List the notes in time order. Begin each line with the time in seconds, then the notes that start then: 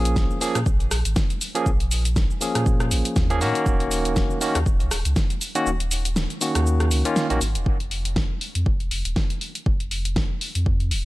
Already playing: A#1 F3 A#3 C#4 G#4
0.05 closed hi-hat, cabasa
0.16 kick, snare, cabasa
0.31 cabasa
0.41 F3 A#3 C#4 G#4, open hi-hat, cabasa
0.55 A#2, cross-stick, closed hi-hat, cabasa
0.66 A#1, kick, cabasa
0.80 G#1, closed hi-hat, cabasa
0.91 A#1, cross-stick, open hi-hat, cabasa
1.05 G#1, closed hi-hat, cabasa
1.16 kick, snare, cabasa
1.30 closed hi-hat, cabasa
1.41 open hi-hat, cabasa
1.55 F3 A#3 C#4 G#4, closed hi-hat, cabasa
1.66 A#1, kick, cabasa
1.80 closed hi-hat, cabasa
1.91 open hi-hat, cabasa
2.05 closed hi-hat, cabasa
2.16 kick, snare, cabasa
2.31 cabasa
2.40 F3 A#3 C#4 G#4, open hi-hat, cabasa
2.55 A#2, cross-stick, closed hi-hat, cabasa
2.66 kick, cabasa
2.80 cross-stick, closed hi-hat, cabasa
2.91 G#1, open hi-hat, cabasa
3.05 closed hi-hat, cabasa
3.16 D#2, kick, snare, cabasa
3.30 F3 A#3 C#4 G#4, closed hi-hat, cabasa
3.40 A#2 D#3 A#3 C#4 F#4, open hi-hat, cabasa
3.55 closed hi-hat, cabasa
3.66 D#1, kick, cabasa
3.80 closed hi-hat, cabasa
3.91 open hi-hat, cabasa
4.05 closed hi-hat, cabasa
4.16 kick, snare, cabasa
4.30 cabasa
4.41 D#3 A#3 C#4 F#4, open hi-hat, cabasa
4.55 D#2, cross-stick, closed hi-hat, cabasa
4.66 D#1, kick, cabasa
4.80 C#2, closed hi-hat, cabasa
4.91 D#1, cross-stick, open hi-hat, cabasa
5.05 C#2, closed hi-hat, cabasa
5.16 kick, snare, cabasa
5.30 closed hi-hat, cabasa
5.41 open hi-hat, cabasa
5.55 D#3 A#3 C#4 F#4, closed hi-hat, cabasa
5.66 D#1, cabasa
5.80 closed hi-hat, cabasa
5.91 open hi-hat, cabasa
6.05 closed hi-hat, cabasa
6.16 snare, cabasa
6.30 closed hi-hat, cabasa
6.41 D#3 A#3 C#4 F#4, open hi-hat, cabasa
6.55 D#2, cross-stick, closed hi-hat, cabasa
6.66 cabasa
6.80 cross-stick, closed hi-hat, cabasa
6.91 C#2, open hi-hat, cabasa
7.05 D#3 A#3 C#4 F4, closed hi-hat, cabasa
7.16 snare, cabasa
7.30 A#1 D#3 A#3 C#4 F#4, closed hi-hat, cabasa
7.41 G#1, open hi-hat, cabasa
7.55 D#1, closed hi-hat, cabasa
7.66 F1, kick
7.80 closed hi-hat
7.91 open hi-hat
8.05 closed hi-hat
8.16 kick, snare
8.41 open hi-hat
8.55 F2, closed hi-hat
8.66 F1, kick
8.80 D#1, closed hi-hat
8.91 F1, open hi-hat
9.05 D#1, closed hi-hat
9.16 kick, snare
9.30 closed hi-hat
9.41 open hi-hat
9.55 closed hi-hat
9.66 F1, kick
9.80 closed hi-hat
9.91 open hi-hat
10.05 closed hi-hat
10.16 kick, snare
10.41 open hi-hat
10.55 F2, closed hi-hat
10.66 kick
10.80 closed hi-hat
10.91 D#1, open hi-hat